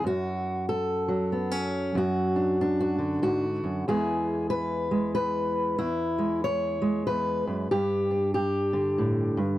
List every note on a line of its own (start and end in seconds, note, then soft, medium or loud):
0.04 1.93 F#2 medium
0.04 0.68 F#4 loud
0.69 1.96 A4 loud
1.08 2.98 F#3 medium
1.32 1.51 B3 soft
1.51 1.96 C#4 soft
1.95 3.22 F#2 medium
1.95 2.79 F#4 medium
2.36 2.60 D4 medium
2.61 3.44 D4 medium
2.80 3.22 F#4 medium
2.98 3.87 D3 medium
3.22 3.62 G#2 medium
3.22 3.87 F#4 medium
3.64 3.87 F#2 medium
3.88 5.78 E2 medium
3.88 4.91 G#3 medium
3.88 6.47 B3 medium
3.88 5.77 E4 soft
3.88 4.49 G#4 medium
4.50 5.13 B4 loud
4.91 5.76 G#3 medium
5.15 5.78 B4 loud
5.79 7.06 E2 medium
5.79 6.43 E4 loud
6.18 6.80 G#3 soft
6.44 7.06 C#5 loud
6.82 7.68 G#3 medium
7.07 7.46 E2 medium
7.07 7.71 B4 loud
7.47 7.71 F#2 medium
7.71 9.36 G2 medium
7.71 8.33 G4 loud
8.11 9.58 D4 soft
8.34 9.58 G4 medium
8.73 9.58 D3 medium
8.98 9.38 A2 medium
9.37 9.58 G2 medium